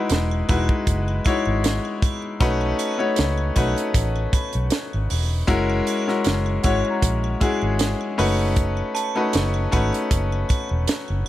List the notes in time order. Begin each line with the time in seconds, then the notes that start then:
Already playing: G#3 D#4 E4 F#4 B4
0.10 E1, snare, closed hi-hat, muted triangle
0.31 muted triangle
0.49 E1 G#3 D#4 E4 F#4 B4, kick, closed hi-hat, triangle
0.69 kick, muted triangle
0.87 F#1, kick, closed hi-hat, muted triangle
1.08 muted triangle
1.25 G#3 D#4 E4 F#4 C#5, kick, closed hi-hat, triangle
1.45 G#1, muted triangle
1.64 snare, closed hi-hat, muted triangle
1.85 muted triangle
2.02 kick, closed hi-hat, triangle
2.22 muted triangle
2.40 B1 A3 C#4 D#4 F#4 B4, kick, closed hi-hat, muted triangle
2.61 muted triangle
2.79 closed hi-hat, triangle
2.98 A3 C#4 D#4 F#4 C#5, muted triangle
3.16 C#2, snare, closed hi-hat, muted triangle
3.38 muted triangle
3.56 B1 A3 C#4 D#4 F#4 B4, kick, closed hi-hat, triangle
3.76 closed hi-hat, muted triangle
3.94 A1, kick, closed hi-hat, muted triangle
4.16 muted triangle
4.33 B5, kick, closed hi-hat, triangle
4.53 B1, closed hi-hat, muted triangle
4.70 snare, closed hi-hat, muted triangle
4.93 G#1, muted triangle
5.10 E1, open hi-hat, triangle
5.31 muted triangle
5.47 F#1 G#3 C#4 E4 F#4 A#4, kick, closed hi-hat, muted triangle
5.70 muted triangle
5.87 closed hi-hat, triangle
6.08 G#3 C#4 E4 F#4 A#4, snare, muted triangle
6.24 F#1, snare, closed hi-hat, muted triangle
6.46 muted triangle
6.63 G#1 G#3 C#4 E4 F#4 C#5 F#5, kick, closed hi-hat, triangle
6.85 muted triangle
6.90 A#5
7.02 A#1, kick, closed hi-hat, muted triangle
7.24 muted triangle
7.40 G#3 C#4 E4 F#4 G#4, kick, closed hi-hat, triangle
7.62 G#1, muted triangle
7.79 snare, closed hi-hat, muted triangle
8.01 muted triangle
8.18 F#1 A3 C#4 D#4 F#4 B4, open hi-hat, triangle
8.39 muted triangle
8.56 kick, closed hi-hat, muted triangle
8.77 muted triangle
8.95 A5, closed hi-hat, triangle
9.15 A3 C#4 D#4 F#4 B4, muted triangle
9.33 F#1, snare, closed hi-hat, muted triangle
9.54 muted triangle
9.72 G#1 A3 C#4 D#4 F#4 B4, kick, closed hi-hat, triangle
9.93 closed hi-hat, muted triangle
10.11 F#1, kick, closed hi-hat, muted triangle
10.32 muted triangle
10.49 kick, closed hi-hat, triangle
10.69 E1, muted triangle
10.88 snare, closed hi-hat, muted triangle
11.08 F#1, muted triangle